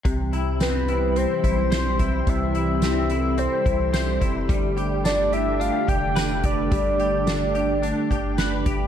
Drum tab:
HH |xxxxxxxx|xxxxxxxx|xxxxxxxx|xxxxxxxx|
TB |--x---x-|--x---x-|--x---x-|--x---x-|
SD |--o---o-|--o---o-|--o---o-|--o---o-|
BD |o----o-o|o----o-o|o----o-o|o----o-o|